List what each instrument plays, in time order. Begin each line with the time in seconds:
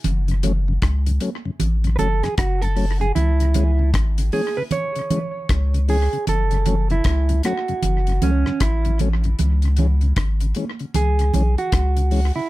0.04 sub bass F#1, closed hi-hat, low conga
0.28 tonewheel organ F#2 C#3, closed hi-hat
0.43 tonewheel organ F#3 A3 C#4, closed hi-hat, low conga
0.68 tonewheel organ F#2 C#3
0.82 sub bass C#2, kick, cross-stick, closed hi-hat
1.06 tonewheel organ F#2 C#3, closed hi-hat
1.20 tonewheel organ F#3 A3 C#4, closed hi-hat, high conga
1.45 tonewheel organ F#2 C#3
1.60 sub bass A1, closed hi-hat, low conga
1.84 tonewheel organ F#2 C#3, closed hi-hat
1.96 tonewheel organ F#3 A3 C#4, clean electric guitar A4 B4, closed hi-hat, low conga
2.00 sub bass F#1
2.23 tonewheel organ F#2 C#3, clean electric guitar G#4, cross-stick, closed hi-hat
2.38 sub bass F#1, clean electric guitar F#4, kick, cross-stick, closed hi-hat
2.62 tonewheel organ F#2 C#3, clean electric guitar A4, closed hi-hat
2.76 tonewheel organ F#3 A3 C#4, open hi-hat
3.01 tonewheel organ F#2 C#3, clean electric guitar G#4, closed hi-hat
3.15 sub bass C#2, clean electric guitar E4, closed hi-hat, low conga
3.40 tonewheel organ C#3, closed hi-hat
3.54 tonewheel organ E3 G#3 C#4, closed hi-hat, low conga
3.79 tonewheel organ C#3
3.94 sub bass G#1, kick, cross-stick, closed hi-hat
4.18 tonewheel organ C#3, closed hi-hat
4.32 tonewheel organ E3 G#3 C#4, clean electric guitar G#4, open hi-hat, high conga
4.57 tonewheel organ C#3, clean electric guitar B4
4.71 clean electric guitar C#5, closed hi-hat, low conga
4.96 tonewheel organ C#3, closed hi-hat
5.10 tonewheel organ E3 G#3 C#4, closed hi-hat, low conga
5.49 sub bass C#2, kick, cross-stick, closed hi-hat
5.74 tonewheel organ C#3, closed hi-hat
5.88 tonewheel organ E3 G#3 C#4, clean electric guitar G#4, open hi-hat
6.13 tonewheel organ C#3, closed hi-hat
6.27 sub bass F#1, clean electric guitar A4, closed hi-hat, low conga
6.51 tonewheel organ F#2 C#3, closed hi-hat
6.66 tonewheel organ F#3 A3 C#4, closed hi-hat, low conga
6.90 tonewheel organ F#2 C#3, clean electric guitar E4, closed hi-hat
7.04 sub bass C#2, kick, cross-stick, closed hi-hat
7.29 tonewheel organ F#2 C#3, closed hi-hat
7.43 tonewheel organ F#3 A3 C#4, clean electric guitar F#4, cross-stick, closed hi-hat, high conga
7.68 tonewheel organ F#2 C#3, closed hi-hat
7.82 sub bass F#1, closed hi-hat, low conga
8.07 tonewheel organ F#2 C#3, closed hi-hat
8.22 sub bass C#2, tonewheel organ F#3 A3 C#4, clean electric guitar C#4, closed hi-hat, low conga
8.46 tonewheel organ F#2 C#3, cross-stick
8.60 sub bass A1, clean electric guitar E4, kick, cross-stick, closed hi-hat
8.85 tonewheel organ F#2 C#3, closed hi-hat
8.99 tonewheel organ F#3 A3 C#4, closed hi-hat, low conga
9.24 tonewheel organ F#2 C#3, closed hi-hat
9.39 sub bass C#2, closed hi-hat, low conga
9.62 tonewheel organ C#3, closed hi-hat
9.77 tonewheel organ E3 G#3 C#4, closed hi-hat, low conga
10.01 tonewheel organ C#3, closed hi-hat
10.16 sub bass G#1, kick, cross-stick, closed hi-hat
10.40 tonewheel organ C#3, closed hi-hat
10.55 tonewheel organ E3 G#3 C#4, closed hi-hat, high conga
10.79 tonewheel organ C#3, closed hi-hat
10.94 sub bass C#2, clean electric guitar G#4, closed hi-hat, low conga
11.19 tonewheel organ C#3, closed hi-hat
11.34 sub bass B1, tonewheel organ E3 G#3 C#4, closed hi-hat, low conga
11.58 clean electric guitar F#4, closed hi-hat
11.72 sub bass C#2, kick, cross-stick, closed hi-hat
11.97 tonewheel organ C#3, closed hi-hat
12.11 tonewheel organ E3 G#3 C#4, open hi-hat
12.36 tonewheel organ C#3, clean electric guitar E4